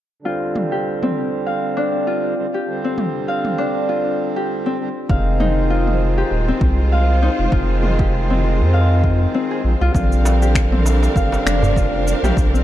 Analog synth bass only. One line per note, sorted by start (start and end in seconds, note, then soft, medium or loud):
5.09 6.23 F1 medium
6.31 6.52 D#1 medium
6.61 7.29 C2 medium
7.39 7.48 F1 medium
7.52 8.62 F1 medium
8.60 9.27 F2 medium
9.64 9.75 A#1 medium
9.81 9.90 C2 medium
9.95 11.08 A#1 loud
11.16 11.37 G#1 medium
11.46 12.14 F1 medium
12.23 12.32 A#1 medium
12.37 12.64 A#1 loud